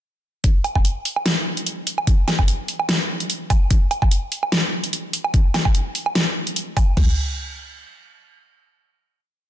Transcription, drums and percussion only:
0.44 kick loud
0.44 closed hi-hat medium
0.64 closed hi-hat medium
0.64 low woodblock medium
0.75 kick medium
0.75 low woodblock soft
0.85 closed hi-hat medium
1.05 open hi-hat medium
1.16 low woodblock medium
1.26 snare loud
1.26 closed hi-hat medium
1.57 closed hi-hat medium
1.66 closed hi-hat medium
1.87 open hi-hat loud
1.98 low woodblock medium
2.07 kick loud
2.07 closed hi-hat medium
2.28 snare medium
2.28 closed hi-hat medium
2.28 low woodblock medium
2.39 kick medium
2.39 low woodblock soft
2.48 closed hi-hat medium
2.68 open hi-hat medium
2.80 low woodblock medium
2.89 snare loud
2.89 closed hi-hat medium
3.20 closed hi-hat medium
3.30 closed hi-hat medium
3.50 kick loud
3.50 open hi-hat loud
3.50 low woodblock medium
3.71 kick loud
3.71 closed hi-hat medium
3.91 closed hi-hat medium
3.91 low woodblock medium
4.02 kick medium
4.02 low woodblock medium
4.11 closed hi-hat medium
4.32 open hi-hat medium
4.43 low woodblock medium
4.52 snare loud
4.52 closed hi-hat medium
4.84 closed hi-hat medium
4.93 closed hi-hat medium
5.13 open hi-hat medium
5.24 low woodblock medium
5.34 kick loud
5.34 closed hi-hat medium
5.54 snare medium
5.54 closed hi-hat medium
5.54 low woodblock medium
5.65 kick medium
5.65 low woodblock medium
5.75 closed hi-hat medium
5.95 open hi-hat medium
6.06 low woodblock medium
6.15 snare loud
6.15 closed hi-hat medium
6.47 closed hi-hat medium
6.56 closed hi-hat medium
6.77 kick loud
6.77 open hi-hat medium
6.77 low woodblock medium
6.97 kick loud
6.97 floor tom loud
6.97 crash medium

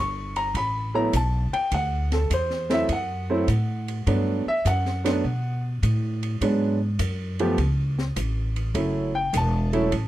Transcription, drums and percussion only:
0.36 ride soft
0.55 kick soft
0.55 ride medium
1.13 kick soft
1.13 hi-hat pedal medium
1.13 ride medium
1.53 ride soft
1.72 kick soft
1.72 ride medium
2.12 snare soft
2.12 ride soft
2.30 kick soft
2.30 hi-hat pedal medium
2.30 ride medium
2.50 snare soft
2.70 snare soft
2.70 ride soft
2.89 kick soft
2.89 ride medium
3.48 kick soft
3.48 hi-hat pedal soft
3.48 ride medium
3.88 ride soft
4.07 kick soft
4.07 ride medium
4.65 kick soft
4.65 hi-hat pedal medium
4.65 ride medium
4.85 snare soft
5.05 snare soft
5.05 ride medium
5.24 kick soft
5.83 kick soft
5.83 hi-hat pedal soft
5.83 ride medium
6.23 ride soft
6.41 kick soft
6.41 ride medium
6.99 kick soft
6.99 hi-hat pedal medium
6.99 ride medium
7.39 ride soft
7.58 kick soft
7.58 ride medium
7.98 snare soft
8.16 kick soft
8.16 hi-hat pedal medium
8.16 ride medium
8.56 ride soft
8.75 kick soft
8.75 ride medium
9.33 kick soft
9.33 hi-hat pedal medium
9.33 ride medium
9.73 ride soft
9.92 kick soft
9.92 ride medium

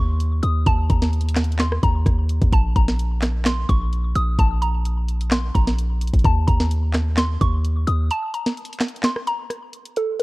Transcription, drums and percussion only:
0.20 closed hi-hat medium
0.43 closed hi-hat medium
0.67 kick loud
0.67 closed hi-hat medium
0.90 kick loud
0.90 closed hi-hat medium
1.02 snare medium
1.13 closed hi-hat soft
1.21 closed hi-hat medium
1.29 closed hi-hat medium
1.36 snare loud
1.36 clap medium
1.36 closed hi-hat medium
1.44 closed hi-hat medium
1.52 closed hi-hat medium
1.59 snare loud
1.59 clap medium
1.59 closed hi-hat medium
1.72 cross-stick loud
1.83 kick medium
1.83 closed hi-hat medium
2.06 kick loud
2.06 cross-stick medium
2.06 closed hi-hat medium
2.29 closed hi-hat medium
2.29 open hi-hat medium
2.42 kick loud
2.42 closed hi-hat medium
2.53 kick loud
2.53 closed hi-hat medium
2.76 kick loud
2.76 closed hi-hat medium
2.88 snare medium
2.99 closed hi-hat medium
3.22 snare loud
3.22 clap medium
3.22 closed hi-hat medium
3.45 snare loud
3.45 clap medium
3.45 closed hi-hat medium
3.69 kick loud
3.69 closed hi-hat medium
3.93 closed hi-hat medium
4.15 closed hi-hat medium
4.39 kick loud
4.39 closed hi-hat medium
4.62 closed hi-hat medium
4.85 closed hi-hat medium
5.08 closed hi-hat medium
5.21 closed hi-hat medium
5.31 snare loud
5.31 clap medium
5.31 closed hi-hat medium
5.55 kick loud
5.55 closed hi-hat medium
5.67 snare medium
5.79 closed hi-hat medium
6.01 closed hi-hat medium
6.08 closed hi-hat medium
6.14 kick loud
6.14 closed hi-hat medium
6.19 closed hi-hat soft
6.25 kick loud
6.25 closed hi-hat medium
6.48 kick loud
6.48 closed hi-hat medium
6.60 snare medium
6.71 closed hi-hat medium
6.94 snare loud
6.94 clap medium
6.94 closed hi-hat medium
7.17 snare loud
7.17 clap medium
7.17 closed hi-hat medium
7.41 kick loud
7.41 closed hi-hat medium
7.65 closed hi-hat medium
7.87 closed hi-hat medium
8.11 closed hi-hat medium
8.34 closed hi-hat medium
8.46 snare medium
8.57 closed hi-hat soft
8.65 closed hi-hat medium
8.73 closed hi-hat medium
8.80 snare loud
8.80 clap medium
8.80 closed hi-hat medium
8.88 closed hi-hat medium
8.96 closed hi-hat soft
9.03 snare loud
9.03 clap medium
9.03 closed hi-hat medium
9.16 cross-stick loud
9.27 closed hi-hat medium
9.50 cross-stick medium
9.50 closed hi-hat medium
9.73 closed hi-hat medium
9.73 open hi-hat medium
9.86 closed hi-hat medium
9.97 closed hi-hat medium

